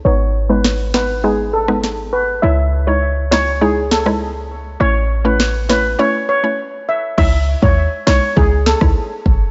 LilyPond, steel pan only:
\new Staff \with { instrumentName = "Steel pan" } { \time 4/4 \key cis \minor \tempo 4 = 101 cis''8 r16 b'16 r8 b'16 r16 gis'16 r16 a'16 r8. b'16 r16 | e''8 r16 cis''16 r8 cis''16 r16 gis'16 r16 a'16 r4 r16 | cis''8 r16 b'16 r8 b'16 r16 cis''16 r16 cis''16 r8. e''16 r16 | e''8 r16 cis''16 r8 cis''16 r16 gis'16 r16 a'16 r4 r16 | }